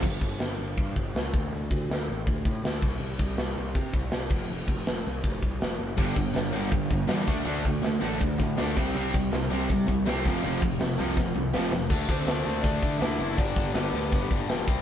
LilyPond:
<<
  \new Staff \with { instrumentName = "Lead electric guitar" } { \time 4/4 \key d \mixolydian \tempo 4 = 162 r1 | r1 | r1 | r1 |
r1 | r1 | r1 | r1 |
r8 <c' c''>4. <d' d''>4 <e' e''>4 | <d' d''>4 <b b'>4. r4. | }
  \new Staff \with { instrumentName = "Distorted electric guitar" } { \clef bass \time 4/4 \key d \mixolydian r1 | r1 | r1 | r1 |
<g, d g>8 <g, d>8 <g, d>8 <g, d g>8 <g, d>8 <g, d>8 <g, d g>8 <d a d'>8 | <d a d'>8 <d a>8 <d a>8 <d a d'>8 <d a>8 <d a>8 <d a d'>8 <c g c'>8 | <c g c'>8 <c g>8 <c g>8 <c g c'>8 <c g>8 <c g>8 <c g c'>8 <f, c f>8 | <f, c f>8 <f, c>8 <f, c>8 <f, c f>8 <f, c>8 <f, c>8 <f, c f>8 <f, c>8 |
<d a d'>8 <d a d'>8 <d a d'>8 <d a d'>8 <d a d'>8 <d a d'>8 <d a d'>8 <d a d'>8 | <g, d g>8 <g, d g>8 <g, d g>8 <g, d g>8 <g, d g>8 <g, d g>8 <g, d g>8 <c g c'>8 | }
  \new Staff \with { instrumentName = "Distorted electric guitar" } { \clef bass \time 4/4 \key d \mixolydian r1 | r1 | r1 | r1 |
<g, d g>8 <g, d>8 <g, d>8 <g, d g>8 <g, d>8 <g, d>8 <g, d g>8 <d a d'>8 | <d a d'>8 <d a>8 <d a>8 <d a d'>8 <d a>8 <d a>8 <d a d'>8 <c g c'>8 | <c g c'>8 <c g>8 <c g>8 <c g c'>8 <c g>8 <c g>8 <c g c'>8 <f, c f>8 | <f, c f>8 <f, c>8 <f, c>8 <f, c f>8 <f, c>8 <f, c>8 <f, c f>8 <f, c>8 |
r1 | r1 | }
  \new Staff \with { instrumentName = "Picked electric bass" } { \clef bass \time 4/4 \key d \mixolydian g,,8 g,,8 g,,8 g,,8 g,8 g,,8 cis,8 d,8 | d,8 d,8 d,8 a,,8 d,8 a,8 d,8 c,8 | c,8 c,8 c,8 c,8 c8 c,8 c,8 f,,8 | f,,8 f,,8 f,,8 c,8 f,,8 c,8 f,,8 fis,,8 |
g,,8 g,,8 g,,8 g,,8 g,8 g,,8 e,8 d,8 | d,8 d,8 d,8 a,,8 d,8 a,8 d,8 c,8 | c,8 c,8 c,8 c,8 c8 c,8 c,8 f,,8 | f,,8 f,,8 f,,8 c,8 f,,8 c,8 f,,8 f,,8 |
d,8 d,8 d,8 d,8 d,8 d8 d,8 fis,,8 | g,,8 g,,8 g,,8 d,8 g,,8 g,,8 e,,8 c,8 | }
  \new DrumStaff \with { instrumentName = "Drums" } \drummode { \time 4/4 <cymc bd>8 bd8 <hho sn>4 <hho bd>8 bd8 <hho sn>8 bd8 | hho8 bd8 <hho sn>4 <hho bd>8 bd8 <hho sn>8 <cymc bd>8 | r8 bd8 <hho sn>4 <hho bd>8 bd8 <hho sn>8 <cymc bd>8 | r8 bd8 <hho sn>4 <hho bd>8 bd8 <hho sn>4 |
<cymc bd>8 bd8 <hho sn>4 <hho bd>8 bd8 <hho sn>8 <cymc bd>8 | r8 bd8 <hho sn>4 <hho bd>8 bd8 <hho sn>8 <cymc bd>8 | r8 bd8 <hho sn>4 <hho bd>8 bd8 <hho sn>8 <cymc bd>8 | r8 bd8 <hho sn>4 <bd sn>4 sn8 sn8 |
<cymc bd>8 bd8 <hho sn>4 <hho bd>8 bd8 <hho sn>4 | <hho bd>8 bd8 <hho sn>4 <hho bd>8 bd8 <hho sn>8 bd8 | }
>>